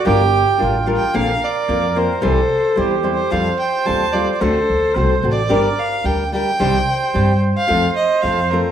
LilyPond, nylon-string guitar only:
\new Staff \with { instrumentName = "Nylon-string guitar" } { \time 2/4 \key g \minor \tempo 4 = 110 <g d' f' bes'>8 r8 <g d' f' bes'>8 <g d' f' bes'>8 | \key bes \major <bes, d bes c' f' bes'>8 r8 <bes c' f' bes'>8 <bes c' f' bes'>8 | <c e g c' e' c''>8 r8 <g c' e' c''>8 <g c' e' c''>8 | <f g c' f' a'>8 r8 <g c' f' a'>8 <g c' f' a'>8 |
<d a c' fis' a'>8 r8 <a c' fis' a'>8 <a c' fis' a'>8 | <g d' g' bes'>8 r8 <g d' g' bes'>8 <g d' g' bes'>8 | <c ees g c' g' c''>8 r8 <g c' g' c''>8 r8 | <f a c' f' a'>8 r8 <a c' f' a'>8 <a c' f' a'>8 | }